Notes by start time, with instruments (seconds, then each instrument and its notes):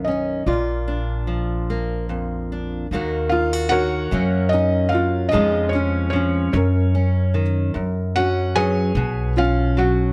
Already playing: upright bass B1, steel-string acoustic guitar F#2 D#3 B3 D#4
0.05 steel-string acoustic guitar C#4, felt piano D#5
0.46 upright bass A#1, steel-string acoustic guitar A#2 F4, felt piano F4 D5
0.88 steel-string acoustic guitar D4
1.27 steel-string acoustic guitar F3
1.70 steel-string acoustic guitar A#3
2.09 steel-string acoustic guitar F2
2.52 steel-string acoustic guitar D4
2.91 upright bass D#2, steel-string acoustic guitar D#2 D#3 A#3 F#4
3.29 steel-string acoustic guitar D#4, felt piano F4 F5
3.53 steel-string acoustic guitar F#4
3.69 steel-string acoustic guitar D#3, felt piano F#4 A#4 C#5 F#5
4.11 steel-string acoustic guitar F#2 F#3 A#3 C#4, upright bass F#2
4.49 steel-string acoustic guitar C#4, felt piano D#5
4.54 felt piano D#4
4.89 steel-string acoustic guitar F#3, felt piano F5
4.94 felt piano F4
5.29 steel-string acoustic guitar F2 F3, felt piano D#5
5.33 upright bass F2, steel-string acoustic guitar G#3 C#4 F4, felt piano D#4 G#4
5.69 steel-string acoustic guitar C#4, felt piano C#5
5.75 felt piano C#4
6.10 steel-string acoustic guitar F3, felt piano C#5
6.15 felt piano C#4
6.53 steel-string acoustic guitar F#2, upright bass F#2, felt piano C#4 A#4 C#5
6.95 steel-string acoustic guitar C#4
7.34 steel-string acoustic guitar D#3
7.74 steel-string acoustic guitar F#2, upright bass F#2
8.16 steel-string acoustic guitar C#4, felt piano F#4 F#5
8.55 steel-string acoustic guitar F#3, felt piano G#4 B4 C#5 G#5
8.95 upright bass B1, steel-string acoustic guitar B2
9.37 steel-string acoustic guitar C#4, felt piano F4 F5
9.77 steel-string acoustic guitar F#3, felt piano F#4 F#5